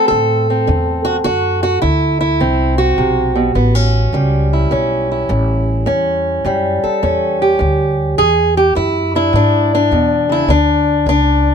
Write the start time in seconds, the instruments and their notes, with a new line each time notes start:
Already playing: steel-string acoustic guitar A3 C4
0.08 upright bass A2, steel-string acoustic guitar D3 A4
0.50 steel-string acoustic guitar C4
0.67 upright bass E2, steel-string acoustic guitar D3
1.05 steel-string acoustic guitar F#4
1.24 upright bass F#2, steel-string acoustic guitar D3 F#4
1.63 steel-string acoustic guitar F#4
1.82 upright bass D2, steel-string acoustic guitar D3 E4
2.21 steel-string acoustic guitar E4
2.40 upright bass C2, steel-string acoustic guitar D3 C4
2.78 steel-string acoustic guitar F#4
2.98 upright bass B1, steel-string acoustic guitar C3
3.35 steel-string acoustic guitar B2
3.55 upright bass A1, steel-string acoustic guitar A2 B3
3.75 steel-string acoustic guitar C#4
4.13 upright bass C#2, steel-string acoustic guitar A2 G3
4.53 steel-string acoustic guitar E4
4.71 upright bass B1, steel-string acoustic guitar A2 C#4
5.12 steel-string acoustic guitar E4
5.29 upright bass A1, steel-string acoustic guitar A2
5.86 upright bass E2, steel-string acoustic guitar A2 C#4
6.45 upright bass F#2, steel-string acoustic guitar A2 G3
6.84 steel-string acoustic guitar A4, muted upright bass stroke
7.03 upright bass E2, steel-string acoustic guitar A2 C#4
7.42 steel-string acoustic guitar G4
7.59 upright bass D2, steel-string acoustic guitar A2
8.18 steel-string acoustic guitar E2 G#4, upright bass E2
8.57 steel-string acoustic guitar G4
8.75 steel-string acoustic guitar E2 E4, upright bass F#2
9.15 steel-string acoustic guitar D4 E4
9.33 steel-string acoustic guitar E2 D4, upright bass G#2
9.75 steel-string acoustic guitar D4
9.91 upright bass E2, steel-string acoustic guitar B2
10.29 steel-string acoustic guitar C#3 E4
10.48 upright bass D2, steel-string acoustic guitar D3 D4
11.06 upright bass C#2, steel-string acoustic guitar D3 D4